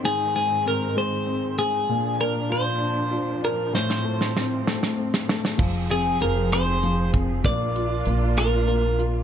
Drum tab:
CC |------------|------------|------------|x-----------|
HH |------------|------------|------------|--x-x-x-x-x-|
SD |------------|------------|oo-oo-oo-ooo|------r-----|
BD |------------|------------|------------|o---------o-|

CC |------------|
HH |x-x-x-x-x-x-|
SD |------r-----|
BD |o-----------|